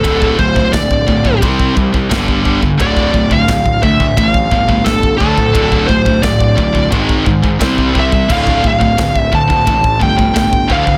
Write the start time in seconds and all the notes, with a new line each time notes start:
Already playing: A4
0.03 D1 D2 A2 D3, kick, ride bell
0.22 kick
0.39 D1 D2 A2 C5, kick
0.56 D2 A2, kick
0.73 D1 D2 A2 D5, kick, snare, ride bell
0.91 kick
1.08 D1 D2 A2, kick
1.25 D2 A2, kick
1.42 C2 C3 G3 C4, kick, ride bell
1.59 kick
1.76 C2 C3 G3, kick
1.94 C3 G3, kick
2.10 G1 G2 D3 G3, kick, snare, ride bell
2.28 kick
2.44 G2 D3 G3, kick
2.61 G2 D3, kick
2.79 D1 D2 A2 D3 D5, kick, ride bell
2.97 kick
3.14 D1 D2 A2, kick
3.31 D2 A2 F5, kick
3.48 D1 D2 A2, kick, snare, ride bell
3.66 kick
3.83 D2 A2 E5, kick
4.00 D2 A2, kick
4.17 A1 D2 A2 E5, kick, ride bell
4.29 F5
4.34 kick
4.51 G1 D2 A2, kick
4.69 D2 A2, kick
4.84 G1 D2 A2 A4, kick, snare, ride bell
5.03 kick
5.18 D2 A2 D3 A4, kick
5.36 D2 A2, kick
5.53 D1 D2 A2 D3, kick, ride bell
5.72 kick
5.87 D1 D2 A2 C5, kick
6.05 D2 A2, kick
6.22 D1 D2 A2 D5, kick, snare, ride bell
6.40 kick
6.56 D1 D2 A2, kick
6.73 D2 A2, kick
6.90 G#1 G#2 D#3 G#3, kick, ride bell
7.09 kick
7.25 G#2 D#3, kick
7.43 G#2 D#3, kick
7.59 C2 C3 G3 C4, kick, snare, ride bell
7.78 kick
7.93 C3 G3 C4, kick
8.00 E5
8.12 C3 G3, kick
8.29 D1 D2 A2 D3 F5, kick, crash
8.47 kick
8.64 D1 D2 A2, kick
8.68 F5
8.80 D2 A2, kick
8.98 D1 D2 A2, kick, snare, ride bell
9.16 E5, kick
9.32 D2 A2 A5, kick
9.50 D2 A2, kick
9.67 A1 D2 A2, kick, ride bell
9.84 kick
10.00 G1 D2 A2 G5, kick
10.18 D2 A2, kick
10.34 G1 D2 A2, kick, snare, ride bell
10.53 kick
10.68 D2 A2 D3 F5, kick
10.86 D2 A2, kick